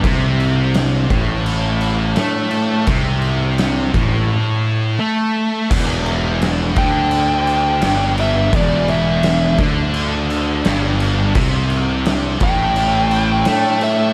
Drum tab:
CC |xxxxxxxx|xxxx----|xxxxxxxx|xxxxxxxx|
SD |--o---o-|--o-----|--o---o-|--o---o-|
BD |o--o----|o--o----|o--o----|o--o----|

CC |xxxxxxxx|
SD |--o---o-|
BD |o--o----|